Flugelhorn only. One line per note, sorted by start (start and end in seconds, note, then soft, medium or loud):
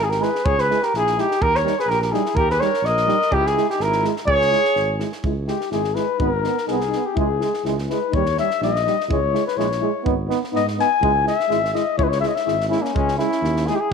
0.03 0.11 E4 medium
0.09 0.22 G4 medium
0.20 0.44 G#4 medium
0.44 0.59 G#4 loud
0.59 0.83 G#4 medium
0.82 0.93 G4 medium
0.95 1.19 E4 medium
1.17 1.42 D#4 medium
1.41 1.56 G4 medium
1.55 1.78 A#4 medium
1.78 1.93 G#4 medium
1.92 2.02 G4 medium
2.04 2.15 G4 medium
2.13 2.40 E4 medium
2.39 2.50 G4 loud
2.51 2.64 G#4 medium
2.63 2.87 A#4 medium
2.87 3.36 A#4 medium
3.35 3.50 E4 loud
3.50 3.71 E4 medium
3.74 3.86 D#4 medium
3.85 4.06 E4 medium
4.30 4.97 G#4 loud
5.48 5.71 G4 medium
5.72 5.97 G#4 medium
5.95 6.19 B4 medium
6.19 6.30 B4 medium
6.30 6.68 A#4 medium
6.68 7.08 G#4 medium
7.06 7.20 G4 medium
7.18 7.66 G#4 medium
7.90 8.16 B4 medium
8.15 8.38 C#5 medium
8.40 8.61 E5 loud
8.64 9.08 D#5 medium
9.12 9.45 C#5 medium
9.47 9.59 B4 medium
9.58 10.06 C#5 medium
10.56 10.66 D#5 loud
10.81 11.24 G#5 loud
11.28 11.72 E5 loud
11.74 11.97 D#5 medium
11.98 12.05 C#5 loud
12.04 12.11 B4 medium
12.10 12.20 C#5 medium
12.21 12.30 E5 medium
12.28 12.37 D#5 medium
12.35 12.68 E5 medium
12.69 12.81 C#4 medium
12.80 12.93 A#3 medium
12.93 13.16 G#3 medium
13.18 13.69 C#4 medium
13.67 13.76 E4 medium
13.74 13.82 D#4 medium
13.80 13.92 E4 medium